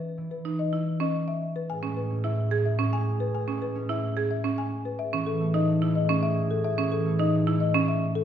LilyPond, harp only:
\new Staff \with { instrumentName = "Harp" } { \clef bass \time 3/4 \key e \major \tempo 4 = 109 e16 e2~ e8. | r16 gis8 cis'2~ cis'16~ | cis'16 gis8 cis'2~ cis'16~ | cis'16 e8 a4~ a16 a4~ |
a16 e8 a4~ a16 a4 | }